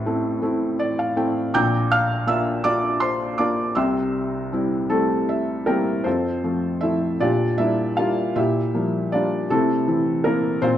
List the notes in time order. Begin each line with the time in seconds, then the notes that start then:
Already playing: A1 A2 C5 E5 A5 C6
0.06 A3 C4 E4
0.42 A3 C4 E4
0.79 D5
0.99 F5
1.16 A3 C4 E4 G5
1.54 A#1 A#2 G5 A#5 D6 G6
1.91 F5 F6
2.27 A#3 D4 F4 E5 E6
2.64 A#3 D4 F4 D5 D6
3.00 C5 C6
3.38 A#3 D4 F4 D5 D6
3.75 C2 C3 E5 G5 C6 E6
4.53 G3 C4 E4
4.90 G3 A3 C4 E4 A4
5.29 E5
5.66 G3 A#3 C4 E4 A#4 G5
6.04 F2 C4 F4 A4 C5
6.44 F3 A3 C4
6.81 F3 A3 C4 E4 E5
7.20 A#2 D4 F4 G4 D5
7.58 G3 A#3 D4 E4 E5
7.97 G3 A#3 D4 F4 F5
8.36 A#2 E4 G4 E5
8.74 F3 G3 A#3
9.12 G3 A#3 D4 F4 D5
9.50 C3 A3 C4 E4 A4
9.87 E3 C4 E4
10.24 A#3 C4 E4 A#4
10.62 A#2 C4 F4 C5